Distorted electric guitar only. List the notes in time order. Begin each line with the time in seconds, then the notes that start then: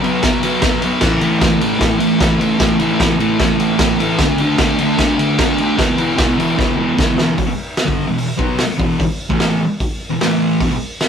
0.01 B2 F#3 B3
0.23 B2 F#3 B3
0.43 B2 F#3 B3
0.62 B2 F#3 B3
0.82 B2 F#3 B3
1.01 A2 E3 A3
1.21 A2 E3 A3
1.40 A2 E3 A3
1.61 A2 E3 A3
1.79 A2 E3 A3
1.98 A2 E3 A3
2.19 A2 E3 A3
2.39 A2 E3 A3
2.59 A2 E3 A3
2.80 A2 E3 A3
3.00 A2 E3 A3
3.18 A2 E3 A3
3.40 A2 E3 A3
3.60 A2 E3 A3
3.81 A2 E3 A3
3.99 A2 E3 A3
4.21 D3 A3 D4
4.41 D3 A3 D4
4.57 D3 A3 D4
4.79 D3 A3 D4
4.97 D3 A3 D4
5.18 D3 A3 D4
5.38 D3 A3 D4
5.60 D3 A3 D4
5.76 E2 B2 E3
5.96 E2 B2 E3
6.16 E2 B2 E3
6.38 E2 B2 E3
6.56 E2 B2 E3
6.76 E2 B2 E3
6.96 E2 B2 E3
7.16 E2 B2 E3
7.35 E2 B2
7.47 muted distorted electric guitar stroke
7.85 G2 D3 G3
8.07 E2 B2
8.37 B2 F#3 B3
8.58 muted distorted electric guitar stroke
8.78 E2 B2 E3
9.01 muted distorted electric guitar stroke
9.30 A2 E3 A3
10.10 E2 B2
10.21 A2 E3 A3
10.60 E2 B2
10.72 muted distorted electric guitar stroke